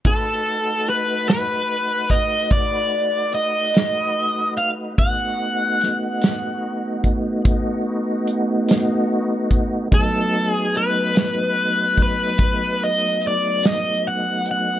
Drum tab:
HH |x-xx-xx-xx-x|x-xx-xx-xx-x|x-xx-xx-xx-x|
SD |---o-----o--|--oo-----o--|---o-----o--|
BD |o----oo-----|o----oo----o|o----oo-----|